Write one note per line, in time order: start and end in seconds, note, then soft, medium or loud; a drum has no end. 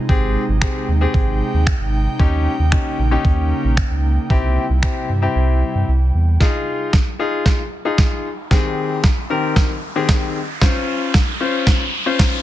0.00 2.16 C3 medium
0.00 2.16 G#3 medium
0.00 4.26 D#4 medium
0.09 0.37 G#1 loud
0.09 0.42 C4 medium
0.09 0.42 G4 medium
0.09 0.42 G#4 loud
0.09 6.37 G5 medium
0.09 kick loud
0.48 0.67 G#1 medium
0.61 0.86 C4 medium
0.61 0.86 G4 medium
0.61 0.86 G#4 medium
0.61 finger snap loud
0.61 kick loud
0.88 1.07 D#2 medium
1.01 1.67 C4 medium
1.01 1.67 G4 medium
1.01 1.67 G#4 medium
1.14 1.42 G#1 loud
1.14 kick loud
1.54 1.73 D#2 medium
1.67 finger snap loud
1.67 kick loud
1.80 2.08 G#1 medium
2.19 2.48 D#2 loud
2.19 4.28 C#3 medium
2.19 4.28 A#3 medium
2.19 2.52 C#4 medium
2.19 2.52 D#4 medium
2.19 2.53 G4 loud
2.19 kick loud
2.59 2.78 D#2 medium
2.72 2.97 C#4 medium
2.72 2.97 D#4 medium
2.72 2.97 G4 medium
2.72 finger snap loud
2.72 kick loud
2.99 3.17 A#1 medium
3.11 3.77 C#4 medium
3.11 3.77 D#4 medium
3.11 3.78 G4 medium
3.25 3.53 D#2 medium
3.25 kick loud
3.64 3.83 A#1 medium
3.77 finger snap loud
3.77 kick loud
3.91 4.19 C#2 medium
4.30 4.58 C2 loud
4.30 6.39 C3 medium
4.30 6.39 G3 medium
4.30 4.63 C4 medium
4.30 6.39 E4 medium
4.30 4.63 E4 medium
4.30 4.63 G4 loud
4.30 kick loud
4.70 4.88 C2 medium
4.83 5.07 C4 medium
4.83 5.07 E4 medium
4.83 5.08 G4 medium
4.83 finger snap loud
4.83 kick loud
5.09 5.28 G2 medium
5.22 5.88 C4 medium
5.22 5.88 E4 medium
5.22 5.88 G4 medium
5.35 5.63 C2 medium
5.75 5.84 G2 medium
5.88 6.12 C2 medium
6.14 6.38 E2 medium
6.40 6.90 D#4 medium
6.40 6.90 F4 medium
6.40 6.90 G#4 medium
6.40 kick loud
6.40 snare soft
6.40 riser medium
6.93 kick loud
6.93 snare medium
7.19 7.60 D#4 medium
7.19 7.61 F4 medium
7.19 7.61 G#4 medium
7.46 kick loud
7.46 snare medium
7.85 8.26 D#4 medium
7.85 8.26 F4 medium
7.85 8.27 G#4 medium
7.98 kick loud
7.98 snare medium
8.51 9.00 D#3 medium
8.51 9.00 C4 medium
8.51 9.00 G4 medium
8.51 9.01 G#4 loud
8.51 kick loud
8.51 snare medium
9.04 kick loud
9.04 snare medium
9.30 9.71 D#3 medium
9.30 9.71 C4 medium
9.30 9.71 G4 medium
9.30 9.71 A#4 medium
9.56 kick loud
9.56 snare medium
9.96 10.37 D#3 medium
9.96 10.37 C4 medium
9.96 10.37 G4 medium
9.96 10.37 G#4 medium
10.09 kick loud
10.09 snare medium
10.61 11.11 C#4 medium
10.61 11.11 F4 medium
10.61 11.11 C5 loud
10.61 kick loud
10.61 snare medium
11.14 kick loud
11.14 snare medium
11.40 11.82 C#4 medium
11.40 11.82 F4 medium
11.40 11.82 C5 medium
11.67 kick loud
11.67 snare medium
12.06 12.42 C#4 medium
12.06 12.42 F4 medium
12.06 12.42 C5 loud
12.19 kick loud
12.19 snare medium